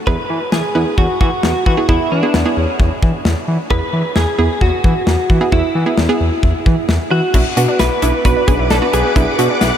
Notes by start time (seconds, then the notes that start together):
0.07 E2 B3 E4 G#4 B4, kick
0.30 E3
0.52 E2 G#4, snare
0.75 E2 B3 E4 B4
0.98 E2 F#4, kick
1.21 E3 F#4, kick
1.43 E2, snare
1.66 E3 F#4, kick
1.77 B3 E4 G#4
1.89 E2 B3 E4 G#4, kick
2.12 E3 D4
2.23 B3 E4 G#4
2.34 E2, snare
2.45 B3 E4 G#4
2.57 E2 C#4
2.79 E2, kick
3.03 E3, kick
3.25 E2, snare
3.48 E3
3.70 E2 B3 E4 G#4 B4, kick
3.93 E3
4.16 E2 G#4, snare
4.39 E2 B3 E4 G#4
4.61 E2 F#4, kick
4.84 E3, kick
5.07 E2, snare
5.30 E3, kick
5.41 B3 E4 G#4
5.52 E2 B3 E4 F#4, kick
5.75 E3
5.86 B3 E4 G#4
5.98 E2, snare
6.09 B3 E4 G#4
6.20 E2
6.43 E2, kick
6.66 E3, kick
6.89 E2, snare
7.11 E3 F#4
7.34 B1 B3 D4 E4 F#4 B4 F#5 D6, kick, crash
7.57 B2 B3 D4 F#4, closed hi-hat
7.68 D4
7.79 B1 E4 B4, snare, closed hi-hat
8.02 B1 B3 D4 E4, closed hi-hat
8.25 B1 B3 D4 F#4 B4, kick, closed hi-hat
8.36 D4
8.48 B1 B3 D4 G#4, kick, closed hi-hat
8.59 B1 E4
8.70 B1 D4 A4, snare, closed hi-hat
8.82 B3 D4 F#4
8.93 B1 G#4, closed hi-hat
9.05 B3
9.16 B1 B3 D4 E4, kick, closed hi-hat
9.39 B2 B3 D4 F#4, closed hi-hat
9.50 D4
9.61 B1 E4, snare, closed hi-hat